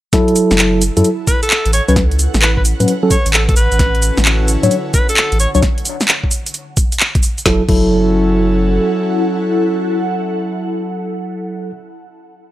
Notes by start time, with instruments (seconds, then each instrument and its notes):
0.13 tine electric piano F#3 E4 A4, ambient pad E4, kick, snare, closed hi-hat, shaker
0.28 closed hi-hat
0.35 ambient pad A4, open hi-hat, shaker
0.51 sub bass F#1, ambient pad F#5, snare, shaker
0.59 clap, shaker
0.82 open hi-hat, shaker
0.97 sub bass F#2, tine electric piano F#3 E4 A4, closed hi-hat, shaker
1.04 closed hi-hat, shaker
1.27 alto saxophone B4, kick, open hi-hat, shaker
1.43 alto saxophone A4, closed hi-hat, shaker
1.50 clap, shaker
1.66 sub bass A1, closed hi-hat
1.73 ambient pad C#4, alto saxophone C#5, open hi-hat, shaker
1.88 sub bass C#2, tine electric piano F#3 C#4 B4, alto saxophone C#5, closed hi-hat, shaker
1.96 kick, snare, closed hi-hat, shaker
2.11 closed hi-hat
2.19 open hi-hat, shaker
2.34 sub bass A1, ambient pad B4, snare, shaker
2.42 alto saxophone B4, clap, shaker
2.57 alto saxophone B4, kick
2.65 open hi-hat, shaker
2.80 sub bass A2, tine electric piano F#3 C#4 B4, closed hi-hat, shaker
2.88 closed hi-hat, shaker
3.03 tine electric piano F#3 C#4 A4
3.11 alto saxophone C#5, kick, open hi-hat, shaker
3.26 sub bass A1, closed hi-hat, shaker
3.34 alto saxophone A4, clap, shaker
3.49 alto saxophone A4, kick, closed hi-hat
3.56 sub bass A1, ambient pad D3, alto saxophone B4, open hi-hat, shaker
3.72 sub bass A1, closed hi-hat, shaker
3.79 analog synth pad C#4 E4 F#4 A4, kick, snare, closed hi-hat, shaker
3.95 closed hi-hat
4.02 open hi-hat, shaker
4.17 sub bass A1, ambient pad C#5, snare, shaker
4.25 clap, shaker
4.48 open hi-hat, shaker
4.63 sub bass A2, tine electric piano F#3 D4 C#5, closed hi-hat, shaker
4.71 closed hi-hat, shaker
4.94 alto saxophone B4, kick, open hi-hat, shaker
5.09 alto saxophone A4, closed hi-hat, shaker
5.17 clap, shaker
5.32 sub bass A1, closed hi-hat
5.40 alto saxophone C#5, open hi-hat, shaker
5.55 sub bass C#2, tine electric piano F#3 D4 C#5, alto saxophone C#5, closed hi-hat, shaker
5.62 kick, snare, closed hi-hat, shaker
5.78 closed hi-hat
5.85 open hi-hat, shaker
6.01 snare, shaker
6.08 clap, shaker
6.24 kick
6.31 open hi-hat, shaker
6.46 closed hi-hat, shaker
6.54 closed hi-hat, shaker
6.77 kick, open hi-hat, shaker
6.92 closed hi-hat, shaker
7.00 clap, shaker
7.15 kick, closed hi-hat
7.23 open hi-hat, shaker
7.38 closed hi-hat, shaker
7.46 sub bass F#1, tine electric piano F#3 E4 A4, analog synth pad C#4 E4 F#4 A4, ambient pad E4, kick, snare
7.55 ambient pad A4
7.62 ambient pad F#5
7.69 sub bass F#1, tine electric piano F#3 E4 A4, kick, crash